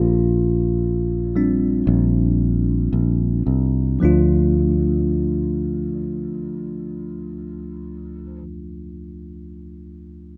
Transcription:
Already playing: A#1 F4
1.36 G3 C4 D4
1.87 A#1
2.93 A#1
3.47 C2
4.00 D2 F3 A3 D4
4.05 F4

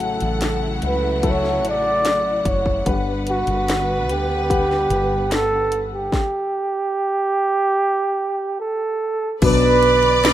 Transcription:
Already playing: A1 A2 C#3 F#3 A3 E4 A4 F#5
0.00 A4, closed hi-hat
0.20 A1, closed hi-hat
0.41 snare, closed hi-hat
0.82 C#2, closed hi-hat
0.87 B4
1.22 F#3 E4 A4, kick, closed hi-hat
1.30 C#5
1.45 snare
1.64 A1, closed hi-hat
1.69 D5
2.05 snare, closed hi-hat
2.45 F#1 C#5, kick, closed hi-hat
2.66 kick
2.86 G1 G2 D3 G3 B3 B4 F#5, kick, closed hi-hat
3.27 F#4, closed hi-hat
3.47 G1, closed hi-hat
3.68 snare, closed hi-hat
4.09 D2 G4, closed hi-hat
4.49 G3 B4 F#5, kick, closed hi-hat
4.71 snare
4.90 G1, closed hi-hat
5.31 A4, snare, closed hi-hat
5.72 closed hi-hat
5.95 G4
6.12 kick, snare
8.60 A4
9.42 B1 B2 D3 F#3 B3 D4 B4 D5, kick, crash, ride
9.83 ride
10.03 ride
10.24 snare, ride

